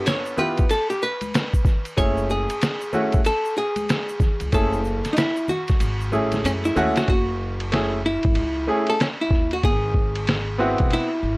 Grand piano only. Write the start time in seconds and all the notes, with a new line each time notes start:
Already playing: B3 D4 F4 A4
0.37 B3 E4 F4 G4
1.97 A3 C#4 E4 G#4
2.93 A3 C#4 E4 F#4
4.53 A3 C#4 E4 G#4
6.12 A3 C#4 E4 G#4
6.76 A3 C#4 E4 F#4
7.72 A3 C#4 E4 G#4
8.67 A3 C#4 E4 G#4
10.58 B3 C4 E4 F#4